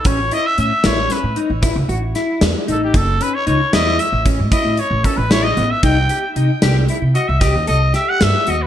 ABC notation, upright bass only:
X:1
M:11/8
L:1/16
Q:1/4=114
K:Ador
V:1 name="Upright bass" clef=bass
A,,,2 z2 A,, z A,,,2 z A,, z A,,,2 ^C,, A,,,2 z2 E,, z A,,,2 | F,,,2 z2 ^C,, z E,,2 z A,,,2 A,, z A,, z A,,, z A,,,3 A,,, z | C,,2 z2 C, z C,,2 z C, z C,,2 _E,, C,,2 z2 G,, z E,,2 |]